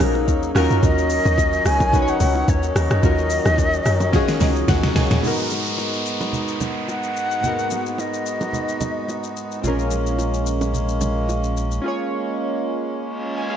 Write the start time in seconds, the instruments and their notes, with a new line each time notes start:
Already playing: harmonium F#3 A#3 D#4, synth keys C#4 D#4 G#4 A#4 C5 C#5
0.00 log drum bass A#1, cross-stick, open hi-hat, low bongo, low conga, shaker
0.15 high bongo
0.28 log drum bass D#2, kick, high bongo, shaker
0.43 shaker
0.55 log drum bass D#2, harmonium D#3 F#3 C#4 D#4, synth keys C#4 F4 F#4 A#4, cross-stick, open hi-hat, shaker
0.70 log drum bass F#2, shaker
0.83 log drum bass D#2, flute D#5, kick, low conga, shaker
0.98 shaker
1.10 open hi-hat, shaker
1.25 log drum bass D#2, low bongo, shaker
1.38 kick, high bongo, shaker
1.53 shaker
1.65 log drum bass C#2, flute G#5, cross-stick, open hi-hat, shaker
1.80 kick, high bongo, low bongo, shaker
1.92 synth keys C#4 D#4 F#4 B4, kick, low conga, shaker
2.02 synth keys C#5
2.08 flute F#5, shaker
2.20 log drum bass C#2, open hi-hat, low bongo, low conga, shaker
2.35 high bongo
2.48 log drum bass D#2, flute C#5, kick, high bongo, shaker
2.63 shaker
2.76 log drum bass D#2, flute D#5, cross-stick, open hi-hat, shaker
2.91 log drum bass F#2, cross-stick, shaker
3.02 log drum bass D#2, synth keys C#4 F4 F#4 A#4, kick, low conga, shaker
3.18 shaker
3.30 open hi-hat, shaker
3.45 log drum bass D#2, cross-stick, low bongo, shaker
3.58 kick, high bongo, shaker
3.73 shaker
3.86 log drum bass F#2, cross-stick, open hi-hat, shaker
4.00 high bongo, low bongo, shaker
4.12 synth keys C#4 F4 F#4 G#4, kick, snare, low conga, shaker
4.28 snare, shaker
4.40 log drum bass C#2, synth keys D#5, snare, open hi-hat, low bongo, low conga, shaker
4.56 shaker
4.68 log drum bass D#2, synth keys F#5, kick, snare, high bongo, shaker
4.83 snare, shaker
4.96 log drum bass C#2, synth keys G#5, snare, open hi-hat, shaker
5.11 log drum bass D#2, snare, shaker
5.21 synth keys G#2 B3 D#4, harmonium G#3 B3 D#4 F#4, downlifter, low conga, shaker
5.26 synth keys F#4 A#4
5.39 shaker
5.50 low bongo, shaker
5.66 shaker
5.78 high bongo, shaker
5.93 shaker
6.06 shaker
6.21 high bongo, low bongo, shaker
6.33 low conga, shaker
6.48 shaker
6.61 low bongo, low conga, shaker
6.88 flute F#5, high bongo, shaker
7.03 shaker
7.16 shaker
7.31 shaker
7.41 synth keys G#2 A#3 D#4, low conga, shaker
7.46 synth keys B3 F#4 A#4
7.59 shaker
7.71 low bongo, shaker
7.86 shaker
7.98 flute D#5, high bongo, shaker
8.14 shaker
8.26 shaker
8.41 high bongo, low bongo, shaker
8.53 low conga, shaker
8.68 shaker
8.81 low bongo, low conga, shaker
9.09 high bongo, shaker
9.23 shaker
9.37 shaker
9.51 shaker
9.61 sub bass A#1, harmonium A#3 C#4, synth keys C4 F4, low conga, shaker
9.66 synth keys C#4 G#4 A#4
9.79 shaker
9.91 low bongo, shaker
10.07 shaker
10.19 high bongo, shaker
10.34 shaker
10.46 shaker
10.61 high bongo, low bongo, shaker
10.73 low conga, shaker
10.89 shaker
11.01 low bongo, low conga, shaker
11.29 high bongo, shaker
11.44 shaker
11.57 shaker
11.71 shaker
11.82 synth keys C#4 F4
11.86 synth keys G#4 C#5
12.94 reverse cymbal
13.38 synth keys G#5
13.50 synth keys G#4 F5